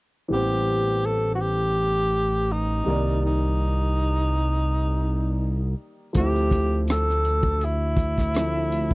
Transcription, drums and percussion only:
6.15 kick medium
6.15 closed hi-hat medium
6.36 closed hi-hat soft
6.51 kick medium
6.51 closed hi-hat medium
6.88 cross-stick medium
6.88 closed hi-hat medium
7.10 cross-stick soft
7.25 closed hi-hat medium
7.43 kick medium
7.61 closed hi-hat medium
7.97 kick medium
7.97 closed hi-hat soft
8.18 kick medium
8.18 cross-stick soft
8.18 closed hi-hat soft
8.34 cross-stick medium
8.34 closed hi-hat medium
8.72 closed hi-hat medium
8.91 kick medium

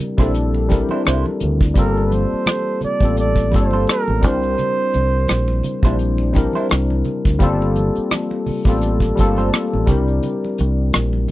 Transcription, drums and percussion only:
0.18 kick medium
0.18 closed hi-hat soft
0.34 closed hi-hat medium
0.34 muted conga soft
0.54 muted conga soft
0.70 kick medium
0.70 closed hi-hat medium
0.70 high conga medium
0.89 high conga medium
1.05 cross-stick medium
1.05 closed hi-hat medium
1.05 muted conga soft
1.26 muted conga soft
1.26 high conga soft
1.40 closed hi-hat medium
1.40 high conga soft
1.40 low conga medium
1.61 kick medium
1.61 closed hi-hat soft
1.76 kick loud
1.76 closed hi-hat medium
1.76 muted conga soft
1.76 low conga medium
1.97 muted conga soft
2.12 closed hi-hat medium
2.12 high conga medium
2.46 cross-stick loud
2.46 closed hi-hat medium
2.46 muted conga soft
2.46 high conga medium
2.81 closed hi-hat medium
2.81 low conga medium
3.00 kick medium
3.17 closed hi-hat medium
3.17 muted conga soft
3.36 kick medium
3.36 muted conga soft
3.52 kick medium
3.52 closed hi-hat medium
3.52 high conga medium
3.71 high conga medium
3.87 cross-stick loud
3.87 closed hi-hat medium
3.87 muted conga soft
4.08 muted conga soft
4.08 high conga medium
4.23 kick medium
4.23 closed hi-hat medium
4.23 low conga medium
4.43 closed hi-hat soft
4.58 closed hi-hat medium
4.58 muted conga soft
4.58 low conga medium
4.93 closed hi-hat medium
4.93 high conga medium
5.28 cross-stick medium
5.28 closed hi-hat medium
5.28 muted conga soft
5.28 high conga medium
5.48 muted conga soft
5.63 closed hi-hat medium
5.63 low conga medium
5.83 kick medium
5.83 closed hi-hat soft
5.99 closed hi-hat medium
6.18 muted conga soft
6.34 kick medium
6.34 cross-stick soft
6.34 closed hi-hat medium
6.34 high conga medium
6.53 closed hi-hat soft
6.53 high conga medium
6.69 cross-stick loud
6.69 closed hi-hat medium
6.69 muted conga soft
6.90 high conga medium
7.04 closed hi-hat medium
7.04 low conga medium
7.25 kick medium
7.40 kick loud
7.40 closed hi-hat medium
7.40 low conga medium
7.62 muted conga soft
7.76 closed hi-hat medium
7.76 high conga medium
7.96 closed hi-hat soft
8.11 cross-stick loud
8.11 closed hi-hat medium
8.11 high conga medium
8.31 muted conga soft
8.46 open hi-hat soft
8.46 low conga medium
8.65 kick medium
8.81 closed hi-hat medium
8.81 muted conga soft
9.00 kick medium
9.17 kick medium
9.17 closed hi-hat medium
9.17 high conga medium
9.37 closed hi-hat soft
9.37 high conga medium
9.53 cross-stick loud
9.53 closed hi-hat medium
9.53 muted conga soft
9.73 high conga medium
9.87 kick medium
9.87 closed hi-hat medium
9.87 low conga medium
10.08 closed hi-hat soft
10.23 closed hi-hat medium
10.23 muted conga soft
10.23 low conga medium
10.44 muted conga soft
10.58 closed hi-hat medium
10.58 high conga medium
10.93 cross-stick loud
10.93 closed hi-hat medium
10.93 muted conga soft
10.93 high conga medium
11.13 muted conga soft
11.28 low conga medium

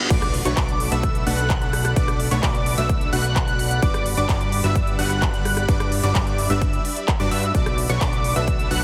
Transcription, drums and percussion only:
0.10 kick loud
0.10 closed hi-hat medium
0.10 crash loud
0.22 cross-stick medium
0.22 closed hi-hat soft
0.34 open hi-hat loud
0.45 closed hi-hat medium
0.57 kick loud
0.57 clap loud
0.57 closed hi-hat medium
0.69 closed hi-hat soft
0.80 open hi-hat loud
0.92 closed hi-hat medium
1.03 kick loud
1.03 closed hi-hat medium
1.15 closed hi-hat soft
1.27 open hi-hat loud
1.38 closed hi-hat medium
1.50 kick loud
1.50 clap loud
1.50 closed hi-hat medium
1.62 closed hi-hat soft
1.73 cross-stick medium
1.73 open hi-hat loud
1.85 cross-stick medium
1.85 closed hi-hat medium
1.96 kick loud
1.96 closed hi-hat medium
2.08 cross-stick medium
2.08 closed hi-hat soft
2.20 open hi-hat loud
2.31 closed hi-hat medium
2.43 kick loud
2.43 clap loud
2.43 closed hi-hat medium
2.55 closed hi-hat soft
2.66 open hi-hat loud
2.78 closed hi-hat medium
2.89 kick loud
2.89 closed hi-hat medium
3.01 closed hi-hat soft
3.13 open hi-hat loud
3.24 closed hi-hat medium
3.36 kick loud
3.36 clap loud
3.36 closed hi-hat medium
3.48 closed hi-hat soft
3.59 open hi-hat loud
3.71 closed hi-hat medium
3.82 kick loud
3.82 closed hi-hat medium
3.94 cross-stick medium
3.94 closed hi-hat soft
4.06 open hi-hat loud
4.17 closed hi-hat soft
4.29 kick loud
4.29 clap loud
4.29 closed hi-hat soft
4.41 closed hi-hat soft
4.52 open hi-hat loud
4.64 closed hi-hat medium
4.76 kick loud
4.76 closed hi-hat soft
4.87 closed hi-hat soft
4.99 open hi-hat loud
5.10 closed hi-hat medium
5.22 kick loud
5.22 clap loud
5.22 closed hi-hat soft
5.34 closed hi-hat soft
5.45 cross-stick medium
5.45 open hi-hat loud
5.57 cross-stick medium
5.57 closed hi-hat soft
5.69 kick loud
5.69 closed hi-hat medium
5.80 cross-stick medium
5.80 closed hi-hat soft
5.92 open hi-hat loud
6.03 closed hi-hat soft
6.15 kick loud
6.15 clap loud
6.15 closed hi-hat soft
6.27 closed hi-hat soft
6.38 open hi-hat loud
6.50 closed hi-hat medium
6.62 kick loud
6.62 closed hi-hat soft
6.73 closed hi-hat soft
6.85 open hi-hat loud
6.96 closed hi-hat soft
7.08 kick loud
7.08 clap loud
7.08 closed hi-hat soft
7.20 closed hi-hat soft
7.31 open hi-hat loud
7.43 closed hi-hat soft
7.55 kick loud
7.55 closed hi-hat medium
7.66 cross-stick medium
7.66 closed hi-hat soft
7.78 open hi-hat loud
7.89 closed hi-hat soft
8.01 kick loud
8.01 clap loud
8.01 closed hi-hat medium
8.13 closed hi-hat soft
8.24 open hi-hat loud
8.36 closed hi-hat medium
8.48 kick loud
8.48 closed hi-hat soft
8.59 closed hi-hat soft
8.71 open hi-hat loud

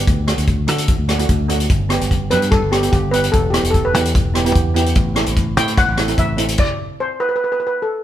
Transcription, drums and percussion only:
0.07 kick loud
0.07 closed hi-hat medium
0.28 cross-stick medium
0.28 closed hi-hat medium
0.38 closed hi-hat medium
0.47 kick medium
0.47 closed hi-hat medium
0.68 closed hi-hat medium
0.78 closed hi-hat medium
0.88 kick loud
0.88 closed hi-hat medium
1.09 cross-stick medium
1.09 closed hi-hat medium
1.19 closed hi-hat medium
1.29 kick medium
1.29 closed hi-hat medium
1.49 closed hi-hat medium
1.60 closed hi-hat medium
1.70 kick loud
1.70 closed hi-hat medium
1.90 cross-stick medium
1.90 closed hi-hat medium
2.01 closed hi-hat medium
2.11 kick medium
2.11 closed hi-hat medium
2.31 closed hi-hat medium
2.42 closed hi-hat medium
2.52 kick loud
2.52 cross-stick medium
2.52 closed hi-hat medium
2.73 cross-stick medium
2.73 closed hi-hat medium
2.83 closed hi-hat medium
2.93 kick medium
2.93 closed hi-hat medium
3.13 closed hi-hat medium
3.24 closed hi-hat medium
3.33 kick loud
3.33 closed hi-hat medium
3.54 cross-stick medium
3.54 closed hi-hat medium
3.64 closed hi-hat medium
3.74 kick medium
3.74 closed hi-hat medium
3.95 closed hi-hat medium
4.05 closed hi-hat medium
4.15 kick loud
4.15 closed hi-hat medium
4.35 cross-stick medium
4.35 closed hi-hat medium
4.46 closed hi-hat medium
4.55 kick medium
4.55 closed hi-hat medium
4.76 closed hi-hat medium
4.86 closed hi-hat medium
4.95 kick loud
4.95 closed hi-hat medium
5.16 cross-stick medium
5.16 closed hi-hat medium
5.26 closed hi-hat medium
5.36 kick medium
5.36 closed hi-hat medium
5.57 closed hi-hat medium
5.68 closed hi-hat medium
5.78 kick loud
5.78 cross-stick medium
5.78 closed hi-hat medium
5.98 cross-stick medium
5.98 closed hi-hat medium
6.08 closed hi-hat medium
6.18 kick medium
6.18 closed hi-hat medium
6.38 closed hi-hat medium
6.48 closed hi-hat medium
6.58 kick loud
6.58 crash medium

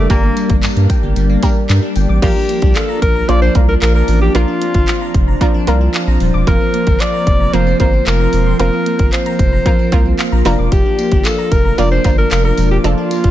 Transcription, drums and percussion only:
0.10 kick loud
0.10 closed hi-hat loud
0.10 tambourine soft
0.37 closed hi-hat medium
0.37 tambourine medium
0.50 kick medium
0.50 closed hi-hat medium
0.63 clap loud
0.63 closed hi-hat loud
0.63 tambourine medium
0.77 closed hi-hat medium
0.90 kick medium
0.90 closed hi-hat medium
0.90 tambourine soft
1.16 closed hi-hat medium
1.16 tambourine soft
1.43 kick loud
1.43 closed hi-hat medium
1.43 tambourine medium
1.69 clap loud
1.69 closed hi-hat loud
1.69 tambourine medium
1.96 open hi-hat medium
1.96 tambourine medium
2.22 kick loud
2.22 closed hi-hat loud
2.22 crash loud
2.49 closed hi-hat medium
2.62 kick medium
2.62 closed hi-hat soft
2.75 clap loud
2.75 closed hi-hat loud
3.02 kick loud
3.02 closed hi-hat medium
3.29 closed hi-hat medium
3.55 kick loud
3.55 closed hi-hat medium
3.82 clap loud
3.82 closed hi-hat loud
4.08 open hi-hat medium
4.35 closed hi-hat loud
4.62 closed hi-hat medium
4.74 kick medium
4.74 closed hi-hat soft
4.88 clap loud
4.88 closed hi-hat loud
5.14 kick loud
5.14 closed hi-hat medium
5.41 kick loud
5.41 closed hi-hat medium
5.67 closed hi-hat medium
5.94 clap loud
5.94 closed hi-hat loud
6.20 open hi-hat medium
6.47 kick loud
6.47 closed hi-hat medium
6.74 closed hi-hat medium
6.87 kick medium
6.87 closed hi-hat soft
7.00 clap loud
7.00 closed hi-hat loud
7.27 kick medium
7.27 closed hi-hat medium
7.54 closed hi-hat medium
7.80 kick loud
7.80 closed hi-hat medium
8.07 clap loud
8.07 closed hi-hat loud
8.33 open hi-hat medium
8.60 closed hi-hat medium
8.86 closed hi-hat medium
8.99 kick medium
8.99 closed hi-hat medium
9.13 clap loud
9.13 closed hi-hat loud
9.26 closed hi-hat soft
9.39 kick loud
9.39 closed hi-hat medium
9.66 kick loud
9.66 closed hi-hat medium
9.92 kick loud
9.92 closed hi-hat medium
10.19 clap loud
10.19 closed hi-hat loud
10.45 open hi-hat medium
10.72 kick loud
10.72 closed hi-hat medium
10.72 tambourine soft
10.99 closed hi-hat medium
10.99 tambourine medium
11.12 kick medium
11.12 closed hi-hat medium
11.25 clap loud
11.25 closed hi-hat loud
11.25 tambourine medium
11.52 kick medium
11.52 closed hi-hat medium
11.52 tambourine soft
11.78 closed hi-hat medium
11.78 tambourine soft
12.04 kick loud
12.04 closed hi-hat medium
12.04 tambourine medium
12.31 clap loud
12.31 closed hi-hat loud
12.31 tambourine medium
12.58 open hi-hat medium
12.58 tambourine medium
12.84 closed hi-hat medium
12.84 tambourine soft
13.11 closed hi-hat medium
13.11 tambourine medium
13.24 kick medium
13.24 closed hi-hat medium

